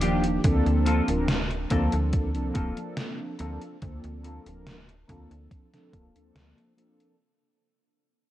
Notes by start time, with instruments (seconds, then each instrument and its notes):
Already playing: fm bass D#1
0.01 analog polysynth D#3 F3 A#3 D4 G4, clean electric guitar D4 F4 G4, closed hi-hat
0.24 closed hi-hat
0.44 fm bass D2, analog polysynth F3 A#3 C4 D4 A4, kick, closed hi-hat
0.66 fm bass D2, closed hi-hat
0.86 clean electric guitar A#3 C4 F4 A4, closed hi-hat
1.08 fm bass D1, analog polysynth F3 A#3 C4 D4 A#4, closed hi-hat
1.28 snare, closed hi-hat
1.51 closed hi-hat
1.70 fm bass D2, analog polysynth F3 A#3 C4 D4 A4, clean electric guitar A#3 C4 F4 A4, kick, closed hi-hat
1.92 fm bass D2, closed hi-hat
2.13 kick, closed hi-hat
2.34 fm bass C2, analog polysynth F3 A#3 C4 D4 A4, closed hi-hat
2.54 fm bass D1, clean electric guitar A#3 C4 F4 A4, kick, closed hi-hat
2.76 analog polysynth F3 A#3 C4 D4 A4, closed hi-hat
2.97 snare, closed hi-hat
3.39 fm bass D2, analog polysynth F3 A#3 C4 D4 A4, clean electric guitar A#3 C4 F4 A4, closed hi-hat
3.62 closed hi-hat
3.82 fm bass D2, analog polysynth F3 A#3 C4 D4 A4, kick, closed hi-hat
4.04 fm bass D2, closed hi-hat
4.23 clean electric guitar A#3 C4 F4 A4, closed hi-hat
4.45 fm bass D1, analog polysynth F3 A#3 C4 D4 A#4, closed hi-hat
4.67 snare, closed hi-hat
4.89 closed hi-hat
5.08 fm bass D2, analog polysynth F3 A#3 C4 D4 A4, clean electric guitar A#3 C4 F4 A4, kick, closed hi-hat
5.31 fm bass D2, closed hi-hat
5.51 kick, closed hi-hat
5.72 analog polysynth F3 A#3 C4 D4 A4, snare, closed hi-hat
5.92 fm bass D1, clean electric guitar A#3 C4 F4 A4, kick, closed hi-hat
6.14 fm bass D2, analog polysynth F3 A#3 C4 D4 A4, closed hi-hat
6.36 fm bass D2, snare, closed hi-hat
6.58 closed hi-hat
6.77 analog polysynth F3 A#3 C4 D4 A4, clean electric guitar A#3 C4 F4 A4, closed hi-hat
7.00 closed hi-hat